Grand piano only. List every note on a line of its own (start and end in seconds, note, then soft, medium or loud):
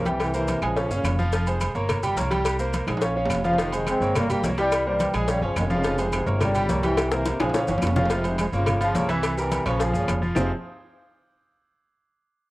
0.06 0.29 G3 medium
0.06 0.29 G4 medium
0.06 0.29 G5 medium
0.34 0.57 A#3 medium
0.34 0.57 A#4 medium
0.34 0.57 C5 medium
0.63 0.74 G#3 medium
0.63 0.74 G#4 medium
0.63 0.74 G#5 medium
0.77 0.88 C#4 medium
0.77 0.88 C#5 medium
0.77 0.88 F5 medium
0.91 1.14 C#4 medium
0.91 1.14 C#5 medium
0.91 1.14 F5 medium
1.19 1.30 F3 medium
1.19 1.31 F4 medium
1.19 1.31 F5 medium
1.33 1.45 F3 medium
1.33 1.45 F4 medium
1.33 1.45 F5 medium
1.47 1.70 G#3 medium
1.47 1.71 G#4 medium
1.47 1.71 C5 medium
1.75 1.98 A#3 medium
1.75 1.98 A#4 medium
1.75 1.99 C#5 medium
2.03 2.15 G3 medium
2.03 2.15 G4 medium
2.03 2.15 G5 loud
2.17 2.29 A#3 medium
2.17 2.29 A#4 medium
2.17 2.29 C#5 medium
2.31 2.54 G3 loud
2.31 2.54 G4 medium
2.31 2.54 G5 medium
2.59 2.83 A#3 medium
2.59 2.83 A#4 medium
2.59 2.83 C5 medium
2.87 2.99 G#3 medium
2.87 2.99 G#4 medium
2.87 2.99 G#5 medium
3.02 3.13 C#4 medium
3.02 3.14 C#5 medium
3.02 3.14 F5 medium
3.16 3.39 C#4 medium
3.16 3.40 C#5 medium
3.16 3.40 F5 medium
3.44 3.56 F3 medium
3.44 3.56 F4 medium
3.44 3.56 F5 medium
3.59 3.70 F3 medium
3.59 3.70 F4 medium
3.59 3.71 F5 medium
3.73 3.96 G#3 medium
3.73 3.96 G#4 medium
3.73 3.96 C5 medium
4.01 4.24 A#3 medium
4.01 4.25 A#4 medium
4.01 4.25 C#5 medium
4.30 4.41 G3 medium
4.30 4.41 G4 medium
4.30 4.41 G5 medium
4.44 4.55 A#3 medium
4.44 4.55 A#4 medium
4.44 4.55 C#5 medium
4.58 4.81 G3 medium
4.58 4.81 G4 medium
4.58 4.81 G5 medium
4.87 5.09 A#3 medium
4.87 5.10 A#4 medium
4.87 5.10 C5 medium
5.14 5.26 G#3 medium
5.14 5.26 G#4 medium
5.14 5.26 G#5 medium
5.28 5.40 C#4 medium
5.28 5.40 C#5 medium
5.28 5.40 F5 medium
5.42 5.65 C#4 medium
5.42 5.66 C#5 medium
5.42 5.66 F5 medium
5.70 5.82 F3 medium
5.70 5.82 F4 medium
5.70 5.82 F5 medium
5.85 5.96 F3 medium
5.85 5.96 F4 medium
5.85 5.97 F5 medium
5.99 6.22 G#3 medium
5.99 6.22 G#4 medium
5.99 6.22 C5 medium
6.27 6.50 A#3 medium
6.27 6.50 A#4 medium
6.27 6.50 C#5 medium
6.55 6.66 G3 medium
6.55 6.67 G4 medium
6.55 6.67 G5 medium
6.69 6.81 A#3 medium
6.69 6.81 A#4 medium
6.69 6.81 C#5 medium
6.84 7.07 G3 medium
6.84 7.07 G4 medium
6.84 7.07 G5 medium
7.12 7.35 A#3 medium
7.12 7.35 A#4 medium
7.12 7.35 C5 medium
7.40 7.52 G#3 medium
7.40 7.52 G#4 medium
7.40 7.52 G#5 medium
7.54 7.65 C#4 medium
7.54 7.66 C#5 medium
7.54 7.66 F5 medium
7.69 7.92 C#4 medium
7.69 7.92 C#5 medium
7.69 7.92 F5 medium
7.96 8.08 F3 medium
7.96 8.08 F4 medium
7.96 8.08 F5 medium
8.10 8.22 F3 medium
8.10 8.22 F4 medium
8.10 8.22 F5 medium
8.24 8.48 G#3 medium
8.24 8.48 G#4 medium
8.24 8.48 C5 medium
8.53 8.76 A#3 medium
8.53 8.76 A#4 medium
8.53 8.76 C#5 medium
8.81 8.92 F3 medium
8.81 8.93 F4 medium
8.81 8.93 F5 medium
8.95 9.07 A#3 medium
8.95 9.07 A#4 medium
8.95 9.07 C#5 medium
9.08 9.32 E3 medium
9.08 9.32 E4 medium
9.08 9.32 E5 medium
9.37 9.61 G3 medium
9.37 9.61 G4 medium
9.37 9.61 A#4 medium
9.65 9.77 C#3 medium
9.65 9.77 C#4 medium
9.65 9.78 C#5 medium
9.79 9.91 F3 medium
9.79 9.92 F4 medium
9.79 9.92 G#4 medium
9.93 10.17 F3 medium
9.93 10.17 F4 medium
9.93 10.17 G#4 medium
10.22 10.33 F3 medium
10.22 10.34 F4 medium
10.22 10.34 F5 medium
10.35 10.49 F3 loud
10.35 10.49 C4 medium
10.35 10.49 D#4 medium
10.35 10.49 F4 medium
10.35 10.50 G#4 medium
10.35 10.49 C5 loud